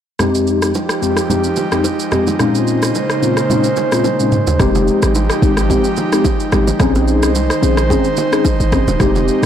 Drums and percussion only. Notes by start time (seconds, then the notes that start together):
0.19 cross-stick, low conga, shaker
0.35 shaker
0.47 shaker
0.62 cross-stick, shaker
0.74 high bongo, shaker
0.89 cross-stick, shaker
1.02 shaker
1.17 cross-stick, shaker
1.30 low conga, shaker
1.44 shaker
1.56 high bongo, low bongo, shaker
1.72 cross-stick, shaker
1.84 high bongo, shaker
2.00 shaker
2.12 cross-stick, low conga, shaker
2.27 high bongo, low bongo, shaker
2.39 cross-stick, low conga, shaker
2.55 shaker
2.67 shaker
2.82 cross-stick, shaker
2.95 high bongo, shaker
3.10 cross-stick, shaker
3.23 shaker
3.37 cross-stick, shaker
3.50 low conga, shaker
3.64 shaker
3.76 high bongo, low bongo, shaker
3.92 cross-stick, shaker
4.04 high tom, high bongo, shaker
4.20 shaker
4.32 mid tom, low conga, shaker
4.47 floor tom, high bongo, low bongo, shaker
4.60 kick, cross-stick, low conga, shaker
4.75 low bongo, shaker
4.88 shaker
5.03 cross-stick, shaker
5.15 high bongo, shaker
5.30 cross-stick, shaker
5.42 kick, shaker
5.57 cross-stick, shaker
5.70 kick, low conga, shaker
5.84 shaker
5.96 low bongo, shaker
6.12 cross-stick, shaker
6.24 kick, high bongo, shaker
6.40 shaker
6.52 cross-stick, low conga, shaker
6.68 high bongo, low bongo, shaker
6.80 kick, cross-stick, low conga, shaker
6.95 low bongo, shaker
7.08 shaker
7.23 cross-stick, shaker
7.35 high bongo, shaker
7.50 cross-stick, shaker
7.63 shaker
7.77 cross-stick, shaker
7.90 kick, low conga, shaker
8.04 shaker
8.17 low bongo, shaker
8.33 cross-stick, shaker
8.45 kick, high bongo, shaker
8.60 shaker
8.72 kick, cross-stick, low conga, shaker
8.88 high bongo, low bongo, shaker
9.00 kick, cross-stick, low conga, shaker
9.15 low bongo, shaker
9.28 shaker